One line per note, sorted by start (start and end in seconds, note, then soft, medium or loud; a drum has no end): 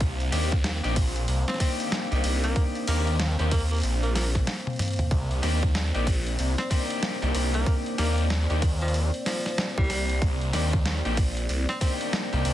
0.00 0.31 C2 loud
0.00 12.53 A#3 medium
0.00 12.53 C4 medium
0.00 12.53 C5 medium
0.00 5.11 F5 medium
0.00 kick loud
0.00 open hi-hat soft
0.20 open hi-hat soft
0.32 0.81 D#2 loud
0.32 0.52 A#3 medium
0.32 0.52 D4 medium
0.32 0.52 D#4 medium
0.32 0.52 G4 loud
0.32 snare soft
0.32 open hi-hat medium
0.52 kick loud
0.52 open hi-hat soft
0.64 snare loud
0.64 open hi-hat soft
0.84 1.26 A#1 loud
0.84 0.97 A#3 medium
0.84 0.97 D4 medium
0.84 0.96 D#4 medium
0.84 0.97 G4 loud
0.84 open hi-hat soft
0.96 kick loud
0.96 open hi-hat medium
1.16 open hi-hat soft
1.28 1.45 C2 loud
1.28 open hi-hat soft
1.48 1.56 C4 medium
1.48 snare medium
1.48 snare soft
1.48 open hi-hat soft
1.50 snare soft
1.54 snare soft
1.56 snare soft
1.58 2.07 A#3 medium
1.58 1.73 C4 medium
1.58 2.07 D4 medium
1.58 2.07 D#4 medium
1.58 2.07 G4 loud
1.58 kick medium
1.58 snare soft
1.58 open hi-hat medium
1.80 open hi-hat soft
1.92 snare loud
1.92 open hi-hat soft
2.11 2.22 C2 loud
2.11 2.85 A#3 medium
2.11 2.85 D4 medium
2.11 2.85 D#4 medium
2.11 2.85 G4 medium
2.11 open hi-hat soft
2.24 2.54 C2 loud
2.24 open hi-hat medium
2.44 2.62 A#3 medium
2.44 open hi-hat soft
2.56 kick loud
2.56 open hi-hat soft
2.75 open hi-hat soft
2.87 3.36 D#2 medium
2.87 3.11 A#3 medium
2.87 3.15 A#3 medium
2.87 3.15 D4 medium
2.87 3.15 D#4 medium
2.87 3.15 G4 loud
2.87 open hi-hat medium
3.07 open hi-hat soft
3.20 snare loud
3.20 open hi-hat soft
3.39 3.82 D#2 loud
3.39 3.52 A#3 medium
3.39 3.52 D4 medium
3.39 3.52 D#4 medium
3.39 3.52 G4 medium
3.39 open hi-hat soft
3.51 3.64 A#3 medium
3.51 kick loud
3.51 open hi-hat medium
3.71 3.79 A#3 medium
3.71 open hi-hat soft
3.73 open hi-hat soft
3.75 open hi-hat soft
3.77 open hi-hat soft
3.78 open hi-hat soft
3.80 open hi-hat soft
3.82 open hi-hat soft
3.83 4.47 A#1 loud
3.83 open hi-hat soft
4.03 4.11 A#3 medium
4.03 open hi-hat soft
4.15 4.28 A#3 medium
4.15 snare medium
4.15 open hi-hat medium
4.35 kick medium
4.35 snare soft
4.35 open hi-hat soft
4.47 snare loud
4.47 open hi-hat soft
4.67 open hi-hat soft
4.67 high tom medium
4.70 open hi-hat soft
4.73 open hi-hat soft
4.76 snare soft
4.76 open hi-hat soft
4.79 open hi-hat medium
4.79 mid tom medium
4.82 open hi-hat medium
4.84 open hi-hat soft
4.88 open hi-hat soft
4.91 open hi-hat soft
4.93 open hi-hat soft
4.96 mid tom medium
4.96 open hi-hat soft
4.99 open hi-hat soft
5.11 5.41 C2 medium
5.11 12.53 D5 medium
5.11 kick loud
5.11 open hi-hat soft
5.31 open hi-hat soft
5.42 5.92 D#2 loud
5.42 5.63 A#3 medium
5.42 5.63 D4 medium
5.42 5.63 D#4 medium
5.42 5.63 G4 loud
5.42 snare soft
5.42 open hi-hat medium
5.63 kick loud
5.63 open hi-hat soft
5.75 snare loud
5.75 open hi-hat soft
5.94 6.37 A#1 loud
5.94 6.07 A#3 medium
5.94 6.07 D4 medium
5.94 6.07 D#4 medium
5.94 6.07 G4 medium
5.94 open hi-hat soft
6.07 kick loud
6.07 open hi-hat medium
6.27 open hi-hat soft
6.39 6.55 C2 loud
6.39 open hi-hat soft
6.58 6.66 C4 medium
6.58 snare medium
6.58 open hi-hat soft
6.70 7.18 A#3 medium
6.70 6.83 C4 medium
6.70 7.18 D4 medium
6.70 7.18 D#4 medium
6.70 7.18 G4 loud
6.70 kick medium
6.70 open hi-hat medium
6.90 open hi-hat soft
7.03 snare loud
7.03 open hi-hat soft
7.22 7.33 C2 loud
7.22 7.95 A#3 medium
7.22 7.95 D4 medium
7.22 7.95 D#4 medium
7.22 7.95 G4 loud
7.22 open hi-hat soft
7.35 7.65 C2 loud
7.35 open hi-hat medium
7.54 7.73 A#3 medium
7.54 open hi-hat soft
7.66 kick loud
7.66 open hi-hat soft
7.86 open hi-hat soft
7.98 8.47 D#2 loud
7.98 8.22 A#3 medium
7.98 8.26 A#3 medium
7.98 8.26 D4 medium
7.98 8.26 D#4 medium
7.98 8.26 G4 loud
7.98 snare soft
7.98 open hi-hat medium
8.18 open hi-hat soft
8.30 snare loud
8.30 open hi-hat soft
8.50 9.11 D#2 loud
8.50 8.63 A#3 medium
8.50 8.63 D4 medium
8.50 8.63 D#4 medium
8.50 8.63 G4 medium
8.50 open hi-hat soft
8.62 kick loud
8.62 open hi-hat medium
8.82 9.00 F3 loud
8.88 open hi-hat soft
8.94 open hi-hat soft
9.14 open hi-hat soft
9.26 9.74 F3 loud
9.26 snare medium
9.26 open hi-hat medium
9.46 snare soft
9.46 open hi-hat soft
9.58 snare loud
9.58 open hi-hat soft
9.78 9.88 C2 loud
9.78 10.22 G3 loud
9.78 kick loud
9.84 open hi-hat soft
9.90 10.20 C2 loud
9.90 snare soft
9.90 open hi-hat medium
10.10 open hi-hat soft
10.22 10.52 C2 loud
10.22 kick loud
10.22 open hi-hat soft
10.41 open hi-hat soft
10.53 11.02 D#2 loud
10.53 10.74 A#3 medium
10.53 10.74 D4 medium
10.53 10.73 D#4 medium
10.53 10.73 G4 loud
10.53 snare soft
10.53 open hi-hat medium
10.73 kick loud
10.73 open hi-hat soft
10.86 snare loud
10.86 open hi-hat soft
11.05 11.47 A#1 loud
11.05 11.18 A#3 medium
11.05 11.18 D4 medium
11.05 11.18 D#4 medium
11.05 11.18 G4 medium
11.05 open hi-hat soft
11.17 kick loud
11.17 open hi-hat medium
11.37 open hi-hat soft
11.49 11.66 C2 loud
11.49 open hi-hat soft
11.69 11.77 C4 medium
11.69 snare medium
11.69 open hi-hat soft
11.81 12.28 A#3 medium
11.81 11.94 C4 medium
11.81 12.28 D4 medium
11.81 12.28 D#4 medium
11.81 12.28 G4 loud
11.81 kick medium
11.81 open hi-hat medium
12.01 open hi-hat soft
12.13 snare loud
12.13 open hi-hat soft
12.33 12.43 C2 loud
12.33 12.53 A#3 medium
12.33 12.53 D4 medium
12.33 12.53 D#4 medium
12.33 12.53 G4 loud
12.33 open hi-hat soft
12.45 12.53 C2 loud
12.45 open hi-hat medium